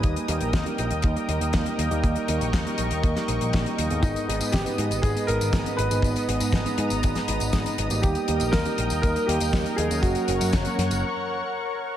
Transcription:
Already playing: G3 A#3 D#4 G4 D#5 D#6
0.03 D#2 A#4 G5, kick, closed hi-hat
0.16 closed hi-hat
0.28 D#2 G3 A#3 D#4 G4, closed hi-hat
0.41 A#1, closed hi-hat
0.53 D#2, kick, snare, closed hi-hat
0.66 G3 A#3 D#4 G4, closed hi-hat
0.78 A#1, closed hi-hat
0.91 D#2, closed hi-hat
1.02 D#2, kick, closed hi-hat
1.16 G3 A#3 D#4 G4, closed hi-hat
1.28 D#2, closed hi-hat
1.41 D#2, closed hi-hat
1.53 D#2 G3 A#3 D#4 G4, kick, snare, closed hi-hat
1.66 closed hi-hat
1.78 D#2, closed hi-hat
1.91 D#2 G3 A#3 D#4 G4, closed hi-hat
2.03 D#2 C#6, kick, closed hi-hat
2.16 closed hi-hat
2.28 D#2 G3 A#3 D#4 G4, closed hi-hat
2.41 A#1, closed hi-hat
2.53 D#2, kick, snare, closed hi-hat
2.66 G3 A#3 D#4 G4, closed hi-hat
2.78 A#1, closed hi-hat
2.91 D#2, closed hi-hat
3.03 D#2, kick, closed hi-hat
3.16 G3 A#3 D#4 G4, snare, closed hi-hat
3.28 A#1, closed hi-hat
3.41 A#1, closed hi-hat
3.53 A#1 G3 A#3 D#4 G4, kick, snare, closed hi-hat
3.66 closed hi-hat
3.78 D#2, closed hi-hat
3.90 D#2 G#2 G#3 B3 D#4 G#4, closed hi-hat
4.02 G#1 B3 D#4 D#6, kick, closed hi-hat, tambourine
4.16 closed hi-hat, tambourine
4.28 G#1 G#2 G#3 B3 D#4 G#4, closed hi-hat
4.41 G#2, closed hi-hat, tambourine
4.52 G#1 G4, kick, snare, closed hi-hat, tambourine
4.66 G#2 G#3 B3 D#4 B4, closed hi-hat, tambourine
4.78 G#2, closed hi-hat
4.91 G#1, closed hi-hat, tambourine
5.02 G#1 G#4, kick, closed hi-hat, tambourine
5.16 G#2 G#3 B3 D#4 G#4, closed hi-hat, tambourine
5.27 G#1 A#4, closed hi-hat
5.41 G#1, closed hi-hat, tambourine
5.53 G#1 G#2 G#3 B3 D#4 G#4, kick, snare, closed hi-hat, tambourine
5.66 closed hi-hat, tambourine
5.77 G#1 B4, closed hi-hat
5.91 G#1 G#2 G#3 B3 D#4 G#4, closed hi-hat, tambourine
6.02 G#1 A#5, kick, closed hi-hat, tambourine
6.16 closed hi-hat, tambourine
6.28 G#1 G#2 G#3 B3 D#4 G#4, closed hi-hat
6.40 G#2, closed hi-hat, tambourine
6.53 G#1, kick, snare, closed hi-hat, tambourine
6.66 G#2 G#3 B3 D#4 G#4, closed hi-hat, tambourine
6.78 G#2, closed hi-hat
6.90 G#1, closed hi-hat, tambourine
7.03 G#1, kick, closed hi-hat, tambourine
7.15 G#2 G#3 B3 D#4 G#4, snare, closed hi-hat, tambourine
7.28 G#1, closed hi-hat
7.40 G#1, closed hi-hat, tambourine
7.53 G#1 G#2 G#3 B3 D#4 G#4, kick, snare, closed hi-hat, tambourine
7.66 closed hi-hat, tambourine
7.78 G#1, closed hi-hat
7.90 G#1 G3 A#3 D#4 G4, closed hi-hat, tambourine
8.02 D#2 G4 A#4 D#5 G5, kick, closed hi-hat, tambourine
8.15 closed hi-hat, tambourine
8.28 D#2 G3 A#3 D#4 G4, closed hi-hat
8.40 A#1, closed hi-hat, tambourine
8.52 D#2 A#4, kick, snare, closed hi-hat, tambourine
8.65 G3 A#3 D#4 G4, closed hi-hat, tambourine
8.78 A#1, closed hi-hat
8.90 D#2, closed hi-hat, tambourine
9.02 D#2 A#4, kick, closed hi-hat, tambourine
9.16 G3 A#3 D#4 G4, closed hi-hat, tambourine
9.26 D#2 G4, closed hi-hat
9.40 D#2, closed hi-hat, tambourine
9.53 D#2 G3 A#3 D#4 G4, kick, snare, closed hi-hat, tambourine
9.66 closed hi-hat, tambourine
9.76 D#2 G#4, closed hi-hat
9.91 D#2 F#3 A#3 C#4 F#4, closed hi-hat, tambourine
10.02 F#1 F#4 C#5 F#5 C#6, kick, closed hi-hat, tambourine
10.15 closed hi-hat, tambourine
10.28 F#1 F#3 A#3 C#4 F#4, closed hi-hat
10.41 F#2, closed hi-hat, tambourine
10.53 F#1, kick, snare, closed hi-hat, tambourine
10.65 F#3 A#3 C#4 F#4, closed hi-hat, tambourine
10.78 F#2, snare, closed hi-hat
10.91 F#1, closed hi-hat, tambourine

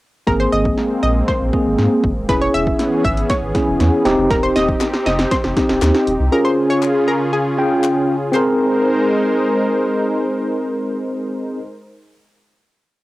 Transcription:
0.27 G#1 G#3 A#3 C4 G#4 A#4, kick, snare
0.40 C5
0.52 G#1 D#5
0.65 kick
0.78 snare
1.03 A#1 D#5
1.28 C5, kick, snare
1.41 A#1
1.53 A#3 C4 G#4, kick
1.66 G#1
1.78 G#2, snare
2.04 G#1, kick
2.16 C#1
2.29 E1 E3 B3 C#4 E4 G#4 B4, kick, snare, closed hi-hat
2.42 C#5
2.54 E1 E5, closed hi-hat
2.67 kick
2.79 snare, closed hi-hat
3.04 G#1 E5, kick, closed hi-hat
3.17 closed hi-hat
3.30 C#5, kick, snare, closed hi-hat
3.42 G#1
3.55 C#4 E4 G#4, kick, snare, closed hi-hat
3.67 E1
3.80 E2, snare, closed hi-hat
4.05 D#1 C4 D#4 G4, snare, closed hi-hat
4.18 F1
4.30 D#1 A#4, kick, snare, closed hi-hat
4.43 C5
4.56 D#1 D#5, snare, closed hi-hat
4.69 kick
4.81 snare, clap, closed hi-hat
4.94 snare
5.06 F1 D#5, snare, closed hi-hat
5.19 snare, closed hi-hat
5.31 C5, kick, snare, closed hi-hat
5.44 F1, snare
5.56 C4 D#4 G4, kick, snare, closed hi-hat
5.69 D#1, snare
5.82 D#2, snare, clap, closed hi-hat
5.94 snare
6.07 D#1, closed hi-hat
6.20 C2
6.32 C#3 C#4 F4 G#4 A#4
6.45 C5
6.70 C#5
6.82 clap
7.08 A#4
7.33 G#4
7.58 C#4 F4 G5
7.84 clap
8.32 G#3 C4 D#4 G#4 A#4 C5, clap
8.36 A#4

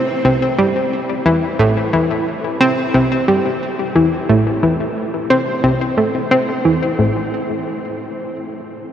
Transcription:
Already playing: C4
0.25 C3
0.58 G3
1.26 E3
1.60 A2
1.93 E3
2.61 C4
2.94 C3
3.28 G3
3.95 E3
4.29 A2
4.63 E3
5.30 C4
5.64 C3
5.98 A3
6.31 C4
6.65 E3
6.99 A2

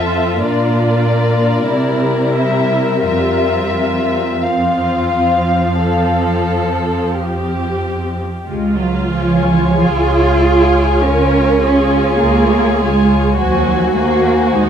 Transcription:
Already playing: F2 C4 F4 A4 E5
0.42 A#2 A#3 D4 A#4 D5
1.70 C3 G3 C4 E4
2.36 E5
3.04 F2 F4 E5
4.42 F3 F4 F5
5.81 A4
7.16 G4
8.47 C#2 G#3 F4
8.79 F#3
9.13 F3 F4 C#5 G#5
9.80 C#2 F4 G#4
10.44 F4 C#5 G#5
11.03 C#2 C#4 A#4
11.62 F4 G#4 C#5 G#5
12.21 C#2 A#3
12.80 G#3 F4 C#5 G#5
13.37 D#2 F#3 F#4 C5 G#5
13.96 A#3 F#4 C5 G#5
14.53 D#2 G#3 D#4

